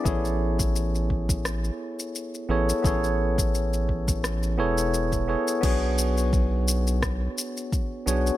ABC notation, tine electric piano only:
X:1
M:4/4
L:1/8
Q:"Swing 16ths" 1/4=86
K:Bdor
V:1 name="Tine electric piano"
[B,EGAc]6- [B,EGAc] [B,EGAc] | [B,EGAc]4- [B,EGAc] [B,EGAc]2 [B,EGAc] | [B,DFGc]6- [B,DFGc] [B,DFGc] |]